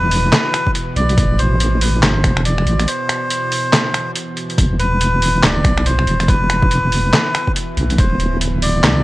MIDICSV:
0, 0, Header, 1, 5, 480
1, 0, Start_track
1, 0, Tempo, 425532
1, 1327, Time_signature, 4, 2, 24, 8
1, 10191, End_track
2, 0, Start_track
2, 0, Title_t, "Melodica"
2, 0, Program_c, 0, 22
2, 0, Note_on_c, 0, 71, 117
2, 801, Note_off_c, 0, 71, 0
2, 1087, Note_on_c, 0, 74, 108
2, 1563, Note_on_c, 0, 72, 103
2, 1581, Note_off_c, 0, 74, 0
2, 2042, Note_on_c, 0, 71, 88
2, 2059, Note_off_c, 0, 72, 0
2, 2267, Note_off_c, 0, 71, 0
2, 2284, Note_on_c, 0, 72, 98
2, 2731, Note_off_c, 0, 72, 0
2, 2764, Note_on_c, 0, 74, 103
2, 3243, Note_on_c, 0, 72, 100
2, 3260, Note_off_c, 0, 74, 0
2, 4639, Note_off_c, 0, 72, 0
2, 5407, Note_on_c, 0, 71, 111
2, 6128, Note_on_c, 0, 74, 115
2, 6148, Note_off_c, 0, 71, 0
2, 6608, Note_on_c, 0, 72, 109
2, 6621, Note_off_c, 0, 74, 0
2, 7087, Note_on_c, 0, 71, 108
2, 7101, Note_off_c, 0, 72, 0
2, 8482, Note_off_c, 0, 71, 0
2, 9010, Note_on_c, 0, 72, 98
2, 9454, Note_off_c, 0, 72, 0
2, 9728, Note_on_c, 0, 74, 106
2, 10191, Note_off_c, 0, 74, 0
2, 10191, End_track
3, 0, Start_track
3, 0, Title_t, "Synth drone"
3, 0, Program_c, 1, 95
3, 0, Note_on_c, 1, 47, 74
3, 0, Note_on_c, 1, 52, 75
3, 5151, Note_off_c, 1, 47, 0
3, 5152, Note_off_c, 1, 52, 0
3, 5165, Note_on_c, 1, 47, 76
3, 5166, Note_on_c, 1, 52, 76
3, 10191, Note_off_c, 1, 47, 0
3, 10191, Note_off_c, 1, 52, 0
3, 10191, End_track
4, 0, Start_track
4, 0, Title_t, "Wobble bass"
4, 0, Program_c, 2, 39
4, 0, Note_on_c, 2, 28, 101
4, 355, Note_off_c, 2, 28, 0
4, 1087, Note_on_c, 2, 35, 103
4, 1312, Note_off_c, 2, 35, 0
4, 1328, Note_on_c, 2, 33, 102
4, 2275, Note_off_c, 2, 33, 0
4, 2287, Note_on_c, 2, 31, 98
4, 2511, Note_off_c, 2, 31, 0
4, 2527, Note_on_c, 2, 28, 87
4, 2995, Note_off_c, 2, 28, 0
4, 3006, Note_on_c, 2, 33, 99
4, 3231, Note_off_c, 2, 33, 0
4, 5167, Note_on_c, 2, 28, 101
4, 6115, Note_off_c, 2, 28, 0
4, 6127, Note_on_c, 2, 26, 98
4, 6351, Note_off_c, 2, 26, 0
4, 6367, Note_on_c, 2, 35, 90
4, 6835, Note_off_c, 2, 35, 0
4, 6848, Note_on_c, 2, 28, 98
4, 7072, Note_off_c, 2, 28, 0
4, 7087, Note_on_c, 2, 28, 103
4, 8035, Note_off_c, 2, 28, 0
4, 8768, Note_on_c, 2, 35, 108
4, 8992, Note_off_c, 2, 35, 0
4, 9007, Note_on_c, 2, 26, 103
4, 9955, Note_off_c, 2, 26, 0
4, 9968, Note_on_c, 2, 36, 98
4, 10191, Note_off_c, 2, 36, 0
4, 10191, End_track
5, 0, Start_track
5, 0, Title_t, "Drums"
5, 128, Note_on_c, 9, 46, 98
5, 241, Note_off_c, 9, 46, 0
5, 367, Note_on_c, 9, 38, 120
5, 367, Note_on_c, 9, 39, 86
5, 367, Note_on_c, 9, 42, 81
5, 480, Note_off_c, 9, 38, 0
5, 480, Note_off_c, 9, 39, 0
5, 480, Note_off_c, 9, 42, 0
5, 608, Note_on_c, 9, 26, 81
5, 608, Note_on_c, 9, 42, 52
5, 721, Note_off_c, 9, 26, 0
5, 721, Note_off_c, 9, 42, 0
5, 752, Note_on_c, 9, 36, 60
5, 846, Note_on_c, 9, 42, 79
5, 865, Note_off_c, 9, 36, 0
5, 959, Note_off_c, 9, 42, 0
5, 1087, Note_on_c, 9, 42, 51
5, 1200, Note_off_c, 9, 42, 0
5, 1233, Note_on_c, 9, 42, 35
5, 1327, Note_off_c, 9, 42, 0
5, 1327, Note_on_c, 9, 36, 113
5, 1327, Note_on_c, 9, 42, 84
5, 1440, Note_off_c, 9, 36, 0
5, 1440, Note_off_c, 9, 42, 0
5, 1568, Note_on_c, 9, 42, 53
5, 1681, Note_off_c, 9, 42, 0
5, 1808, Note_on_c, 9, 42, 86
5, 1920, Note_off_c, 9, 42, 0
5, 2045, Note_on_c, 9, 46, 100
5, 2158, Note_off_c, 9, 46, 0
5, 2288, Note_on_c, 9, 38, 117
5, 2288, Note_on_c, 9, 39, 87
5, 2288, Note_on_c, 9, 42, 84
5, 2400, Note_off_c, 9, 38, 0
5, 2400, Note_off_c, 9, 39, 0
5, 2400, Note_off_c, 9, 42, 0
5, 2526, Note_on_c, 9, 36, 108
5, 2527, Note_on_c, 9, 26, 78
5, 2527, Note_on_c, 9, 42, 54
5, 2639, Note_off_c, 9, 36, 0
5, 2640, Note_off_c, 9, 26, 0
5, 2640, Note_off_c, 9, 42, 0
5, 2671, Note_on_c, 9, 26, 77
5, 2767, Note_on_c, 9, 42, 83
5, 2784, Note_off_c, 9, 26, 0
5, 2880, Note_off_c, 9, 42, 0
5, 2912, Note_on_c, 9, 26, 52
5, 3008, Note_on_c, 9, 42, 55
5, 3025, Note_off_c, 9, 26, 0
5, 3121, Note_off_c, 9, 42, 0
5, 3153, Note_on_c, 9, 26, 51
5, 3153, Note_on_c, 9, 42, 38
5, 3247, Note_off_c, 9, 42, 0
5, 3247, Note_on_c, 9, 42, 86
5, 3265, Note_off_c, 9, 26, 0
5, 3359, Note_off_c, 9, 42, 0
5, 3488, Note_on_c, 9, 26, 78
5, 3488, Note_on_c, 9, 42, 56
5, 3601, Note_off_c, 9, 26, 0
5, 3601, Note_off_c, 9, 42, 0
5, 3727, Note_on_c, 9, 42, 86
5, 3840, Note_off_c, 9, 42, 0
5, 3968, Note_on_c, 9, 46, 96
5, 4081, Note_off_c, 9, 46, 0
5, 4207, Note_on_c, 9, 38, 116
5, 4207, Note_on_c, 9, 39, 94
5, 4207, Note_on_c, 9, 42, 85
5, 4320, Note_off_c, 9, 38, 0
5, 4320, Note_off_c, 9, 39, 0
5, 4320, Note_off_c, 9, 42, 0
5, 4447, Note_on_c, 9, 26, 76
5, 4447, Note_on_c, 9, 42, 55
5, 4560, Note_off_c, 9, 26, 0
5, 4560, Note_off_c, 9, 42, 0
5, 4687, Note_on_c, 9, 42, 83
5, 4800, Note_off_c, 9, 42, 0
5, 4928, Note_on_c, 9, 42, 56
5, 5041, Note_off_c, 9, 42, 0
5, 5074, Note_on_c, 9, 42, 38
5, 5167, Note_on_c, 9, 36, 122
5, 5168, Note_off_c, 9, 42, 0
5, 5168, Note_on_c, 9, 42, 86
5, 5280, Note_off_c, 9, 36, 0
5, 5281, Note_off_c, 9, 42, 0
5, 5409, Note_on_c, 9, 42, 56
5, 5522, Note_off_c, 9, 42, 0
5, 5649, Note_on_c, 9, 42, 84
5, 5762, Note_off_c, 9, 42, 0
5, 5889, Note_on_c, 9, 46, 94
5, 6002, Note_off_c, 9, 46, 0
5, 6128, Note_on_c, 9, 38, 120
5, 6128, Note_on_c, 9, 39, 93
5, 6128, Note_on_c, 9, 42, 87
5, 6241, Note_off_c, 9, 38, 0
5, 6241, Note_off_c, 9, 39, 0
5, 6241, Note_off_c, 9, 42, 0
5, 6367, Note_on_c, 9, 36, 110
5, 6370, Note_on_c, 9, 26, 77
5, 6370, Note_on_c, 9, 42, 55
5, 6480, Note_off_c, 9, 36, 0
5, 6483, Note_off_c, 9, 26, 0
5, 6483, Note_off_c, 9, 42, 0
5, 6515, Note_on_c, 9, 26, 75
5, 6611, Note_on_c, 9, 42, 82
5, 6628, Note_off_c, 9, 26, 0
5, 6723, Note_off_c, 9, 42, 0
5, 6755, Note_on_c, 9, 26, 53
5, 6850, Note_on_c, 9, 42, 58
5, 6867, Note_off_c, 9, 26, 0
5, 6963, Note_off_c, 9, 42, 0
5, 6994, Note_on_c, 9, 26, 52
5, 6994, Note_on_c, 9, 42, 38
5, 7087, Note_on_c, 9, 36, 127
5, 7089, Note_off_c, 9, 42, 0
5, 7089, Note_on_c, 9, 42, 83
5, 7107, Note_off_c, 9, 26, 0
5, 7200, Note_off_c, 9, 36, 0
5, 7202, Note_off_c, 9, 42, 0
5, 7329, Note_on_c, 9, 26, 82
5, 7329, Note_on_c, 9, 42, 55
5, 7442, Note_off_c, 9, 26, 0
5, 7442, Note_off_c, 9, 42, 0
5, 7472, Note_on_c, 9, 36, 107
5, 7569, Note_on_c, 9, 42, 83
5, 7585, Note_off_c, 9, 36, 0
5, 7682, Note_off_c, 9, 42, 0
5, 7807, Note_on_c, 9, 46, 93
5, 7920, Note_off_c, 9, 46, 0
5, 8046, Note_on_c, 9, 38, 124
5, 8046, Note_on_c, 9, 39, 92
5, 8046, Note_on_c, 9, 42, 83
5, 8159, Note_off_c, 9, 38, 0
5, 8159, Note_off_c, 9, 39, 0
5, 8159, Note_off_c, 9, 42, 0
5, 8288, Note_on_c, 9, 26, 83
5, 8288, Note_on_c, 9, 42, 54
5, 8401, Note_off_c, 9, 26, 0
5, 8401, Note_off_c, 9, 42, 0
5, 8432, Note_on_c, 9, 36, 62
5, 8528, Note_on_c, 9, 42, 82
5, 8544, Note_off_c, 9, 36, 0
5, 8640, Note_off_c, 9, 42, 0
5, 8767, Note_on_c, 9, 42, 53
5, 8880, Note_off_c, 9, 42, 0
5, 8912, Note_on_c, 9, 42, 39
5, 9006, Note_off_c, 9, 42, 0
5, 9006, Note_on_c, 9, 42, 80
5, 9007, Note_on_c, 9, 36, 123
5, 9119, Note_off_c, 9, 36, 0
5, 9119, Note_off_c, 9, 42, 0
5, 9247, Note_on_c, 9, 42, 53
5, 9360, Note_off_c, 9, 42, 0
5, 9487, Note_on_c, 9, 42, 81
5, 9600, Note_off_c, 9, 42, 0
5, 9726, Note_on_c, 9, 46, 92
5, 9838, Note_off_c, 9, 46, 0
5, 9968, Note_on_c, 9, 38, 127
5, 9968, Note_on_c, 9, 39, 92
5, 9968, Note_on_c, 9, 42, 79
5, 10080, Note_off_c, 9, 38, 0
5, 10080, Note_off_c, 9, 39, 0
5, 10080, Note_off_c, 9, 42, 0
5, 10191, End_track
0, 0, End_of_file